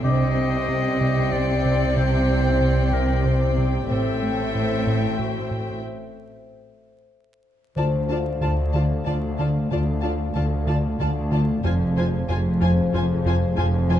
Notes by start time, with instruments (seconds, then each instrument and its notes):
0.02 double bass section C2, cello section C3, analog synth bass C3, viola section C4, celesta D4 D6, glass harmonica G4 C5 D6, violin section D5 G5 C7 C#7, clarinet D#5
0.37 analog synth bass C4
0.69 analog synth bass C3
1.01 analog synth bass C3
1.33 analog synth bass C3, clarinet D5
1.65 analog synth bass C3
1.97 analog synth bass C3, clarinet C5
2.29 analog synth bass C4
2.60 analog synth bass C3
2.92 analog synth bass C3, clarinet A#4
3.25 analog synth bass C3, celesta C5
3.58 analog synth bass C3
3.89 double bass section A1, cello section A2, analog synth bass A2, viola section C4, clarinet A4, glass harmonica A4 C5 E5, violin section E5 G5
4.22 analog synth bass A3
4.54 analog synth bass A2
4.87 analog synth bass A2
5.18 analog synth bass A2, clarinet F#4
5.51 analog synth bass A2
7.76 cello section D2, double bass section D2, analog synth bass D3, viola section F4, glass harmonica A4 D5 F5, celesta C5, violin section D5 A5
8.09 analog synth bass D4, viola section F4, violin section D5 A5
8.41 double bass section D2, cello section D2, analog synth bass D3, viola section F4, violin section D5 A5
8.74 analog synth bass D3, viola section F4, violin section D5 A5
9.05 double bass section D2, cello section D2, analog synth bass D3, viola section F4, violin section D5 A5
9.38 analog synth bass D3, viola section F4, violin section D5 A5
9.70 double bass section D2, cello section D2, analog synth bass D3, viola section F4, violin section D5 A5
10.01 analog synth bass D4, viola section F4, violin section D5 A5, celesta F5
10.35 cello section D2, double bass section D2, analog synth bass D3, viola section F4, violin section D5 A5
10.67 analog synth bass D3, viola section F4, violin section D5 A5
11.00 double bass section D2, cello section D2, analog synth bass D3, viola section F4, violin section D5 A5
11.31 analog synth bass D3, viola section F4, violin section D5 A5
11.64 double bass section F1, analog synth bass F2, cello section F2, viola section F4, glass harmonica G#4 C5 F5, violin section C5 G#5
11.96 analog synth bass F3, viola section F4, violin section C5 G#5
12.28 double bass section F1, analog synth bass F2, cello section F2, viola section F4, violin section C5 G#5
12.61 analog synth bass F2, viola section F4, celesta C5, violin section C5 G#5
12.93 double bass section F1, analog synth bass F2, cello section F2, viola section F4, violin section C5 G#5
13.25 analog synth bass F2, viola section F4, violin section C5 G#5
13.57 double bass section F1, analog synth bass F2, cello section F2, viola section F4, violin section C5 G#5
13.89 analog synth bass F3, viola section F4, violin section C5 G#5